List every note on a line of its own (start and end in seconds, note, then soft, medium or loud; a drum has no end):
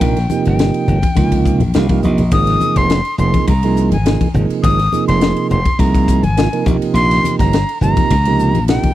0.00 0.25 A#1 medium
0.00 0.19 C3 medium
0.00 0.19 F3 medium
0.00 0.19 A#3 medium
0.00 0.19 D#4 medium
0.00 0.19 A#4 medium
0.00 0.47 G5 medium
0.00 kick loud
0.00 ride medium
0.17 snare soft
0.17 ride medium
0.30 0.99 C3 medium
0.30 0.99 F3 medium
0.30 0.99 A#3 medium
0.30 0.99 D#4 medium
0.30 0.99 G4 medium
0.30 hi-hat pedal medium
0.30 high conga medium
0.45 0.70 G1 medium
0.45 2.01 G5 medium
0.45 ride medium
0.59 snare loud
0.59 ride medium
0.74 ride medium
0.88 1.00 G1 medium
0.88 hi-hat pedal medium
0.88 low conga medium
1.02 kick medium
1.02 ride medium
1.02 high conga medium
1.15 1.61 C#2 medium
1.15 1.63 C3 medium
1.15 1.63 F3 medium
1.15 1.63 A#3 medium
1.15 1.63 D#4 medium
1.15 1.63 F4 medium
1.15 kick medium
1.15 ride medium
1.15 high conga medium
1.32 kick medium
1.32 ride medium
1.45 kick medium
1.45 hi-hat pedal medium
1.60 1.72 A#1 medium
1.60 ride medium
1.60 high conga medium
1.60 low conga medium
1.74 2.01 C2 medium
1.74 1.87 C3 medium
1.74 1.87 F3 medium
1.74 1.87 A#3 medium
1.74 1.87 D#4 medium
1.74 1.87 G4 loud
1.74 2.02 F5 medium
1.74 snare loud
1.74 ride medium
1.89 2.24 C3 medium
1.89 2.24 F3 medium
1.89 2.24 A#3 medium
1.89 2.24 D#4 medium
1.89 2.24 G4 medium
1.89 kick medium
1.89 ride medium
1.89 high conga soft
2.03 2.30 A#1 medium
2.03 2.31 D#5 medium
2.03 hi-hat pedal medium
2.03 low conga medium
2.18 ride medium
2.18 low conga medium
2.31 2.56 G#1 medium
2.31 3.00 C3 medium
2.31 3.00 F3 medium
2.31 3.01 A#3 medium
2.31 3.01 D#4 medium
2.31 3.00 G#4 medium
2.31 2.79 D#6 loud
2.31 kick loud
2.31 ride medium
2.47 snare soft
2.47 ride medium
2.60 hi-hat pedal medium
2.60 high conga medium
2.76 3.00 F1 medium
2.76 3.18 C6 medium
2.76 kick medium
2.76 ride medium
2.90 snare loud
2.90 ride medium
3.05 ride medium
3.18 3.31 F1 medium
3.18 3.53 C3 medium
3.18 3.53 F3 medium
3.18 3.54 A#3 medium
3.18 3.53 D#4 medium
3.18 3.54 G#4 medium
3.18 3.46 C6 medium
3.18 hi-hat pedal medium
3.18 low conga medium
3.33 kick medium
3.33 ride medium
3.33 high conga medium
3.47 3.93 C2 medium
3.47 3.89 A#5 medium
3.47 kick medium
3.47 ride medium
3.63 3.97 C3 medium
3.63 3.97 F3 medium
3.63 3.97 A#3 medium
3.63 3.97 D#4 medium
3.63 3.97 G#4 medium
3.63 ride medium
3.77 hi-hat pedal medium
3.92 4.15 G#1 medium
3.92 4.32 G#5 medium
3.92 ride medium
3.92 high conga medium
4.06 4.29 C3 medium
4.06 4.29 F3 medium
4.06 4.29 A#3 medium
4.06 4.29 D#4 medium
4.06 4.29 G#4 medium
4.06 snare loud
4.06 ride medium
4.21 kick medium
4.21 ride medium
4.21 high conga medium
4.34 4.47 G#1 medium
4.34 4.80 C3 medium
4.34 4.80 F3 medium
4.34 4.80 A#3 medium
4.34 4.80 D#4 medium
4.34 4.80 G#4 medium
4.34 hi-hat pedal medium
4.34 low conga medium
4.50 ride medium
4.63 4.87 G#1 medium
4.63 5.04 D#6 loud
4.63 kick loud
4.63 ride medium
4.79 snare soft
4.79 ride medium
4.92 5.60 C3 medium
4.92 5.60 F3 medium
4.92 5.60 A#3 medium
4.92 5.61 D#4 medium
4.92 5.61 G#4 medium
4.92 hi-hat pedal medium
4.92 high conga medium
5.08 5.32 F1 medium
5.08 5.47 C6 medium
5.08 ride medium
5.21 snare loud
5.21 ride medium
5.37 ride medium
5.50 5.63 F1 medium
5.50 5.81 C6 medium
5.50 hi-hat pedal medium
5.50 low conga medium
5.65 kick medium
5.65 ride medium
5.65 high conga medium
5.79 6.24 C2 loud
5.79 6.25 C3 medium
5.79 6.25 F3 medium
5.79 6.25 A#3 medium
5.79 6.25 D#4 medium
5.79 6.25 G#4 medium
5.79 6.25 A#5 medium
5.79 kick medium
5.79 ride medium
5.94 kick medium
5.94 ride medium
6.08 kick medium
6.08 hi-hat pedal medium
6.23 6.47 G#1 medium
6.23 6.66 G#5 medium
6.23 ride medium
6.23 high conga medium
6.37 6.49 C3 medium
6.37 6.49 F3 medium
6.37 6.49 A#3 medium
6.37 6.49 D#4 medium
6.37 6.49 F4 medium
6.37 snare loud
6.37 ride medium
6.53 6.65 C3 medium
6.53 6.65 F3 medium
6.53 6.65 A#3 medium
6.53 6.65 D#4 medium
6.53 6.66 A#4 medium
6.53 ride medium
6.66 6.78 A#1 medium
6.66 7.59 C3 medium
6.66 7.59 F3 medium
6.66 7.59 A#3 medium
6.66 7.59 D#4 medium
6.66 7.59 G4 medium
6.66 kick medium
6.66 hi-hat pedal medium
6.66 low conga medium
6.81 muted slap bass stroke soft
6.81 ride medium
6.94 7.18 A#1 medium
6.94 7.35 C6 loud
6.94 ride medium
7.11 snare soft
7.11 ride medium
7.24 hi-hat pedal medium
7.24 high conga medium
7.39 7.63 G1 medium
7.39 7.78 A#5 medium
7.39 kick medium
7.39 snare soft
7.39 ride medium
7.53 snare medium
7.53 ride medium
7.69 ride medium
7.81 7.94 G1 medium
7.81 8.16 C3 medium
7.81 8.16 F3 medium
7.81 8.16 A#3 medium
7.81 8.16 D#4 medium
7.81 8.16 G4 medium
7.81 8.64 A#5 loud
7.81 hi-hat pedal medium
7.81 low conga medium
7.96 kick medium
7.96 ride medium
7.96 high conga medium
8.10 8.54 C#2 medium
8.10 kick medium
8.10 ride medium
8.25 8.60 C3 medium
8.25 8.60 F3 medium
8.25 8.60 A#3 medium
8.25 8.60 D#4 medium
8.25 8.60 G4 medium
8.25 ride medium
8.39 hi-hat pedal medium
8.54 8.78 A#1 medium
8.54 ride medium
8.54 high conga medium
8.68 8.91 C3 medium
8.68 8.91 F3 medium
8.68 8.91 A#3 medium
8.68 8.92 D#4 medium
8.68 8.92 G4 medium
8.68 8.94 G5 medium
8.68 snare loud
8.68 ride medium
8.83 kick medium
8.83 ride medium
8.83 high conga medium